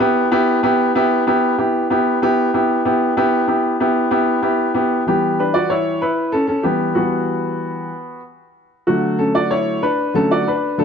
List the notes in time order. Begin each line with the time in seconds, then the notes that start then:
0.00 B3 E4 G4
0.32 B3 E4 G4
0.63 B3 E4 G4
0.95 B3 E4 G4
1.27 B3 E4 G4
1.58 B3 E4 G4
1.90 B3 E4 G4
2.22 B3 E4 G4
2.54 B3 E4 G4
2.85 B3 E4 G4
3.17 B3 E4 G4
3.48 B3 E4 G4
3.80 B3 E4 G4
4.11 B3 E4 G4
4.42 B3 E4 G4
4.74 B3 E4 G4
5.07 E3 G3 B3 G4
5.40 D4 B4
5.54 F#4 D5
5.70 E4 C#5
6.02 E4 B4
6.32 C#4 A4
6.47 C#4 A4
6.63 E3 G3 B3 G4
6.95 E3 G3 B3 F#4
8.87 D3 F#3 A3 F#4
9.19 C#4 A4
9.35 F#4 D5
9.51 E4 C#5
9.83 D4 B4
10.14 D3 F#3 A3 C#4 A4
10.31 F#4 D5
10.48 D4 B4
10.78 D3 F#3 A3 D4 A4